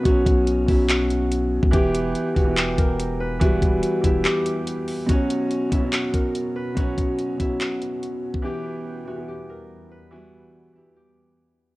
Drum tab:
HH |x-x-x-o-x-x-x---|x-x-x-x-x-x-x---|x-x-x-x-x-x-x-o-|x-x-x-x-x-x-x---|
CP |--------x-------|--------x-------|--------x-------|--------x-------|
BD |o-o---o--------o|o-----o---o-----|o-o---o---------|o-----o---o-----|

HH |x-x-x-x-x-x-x---|----------------|----------------|
CP |--------x-------|----------------|----------------|
BD |o-o---o--------o|----------------|----------------|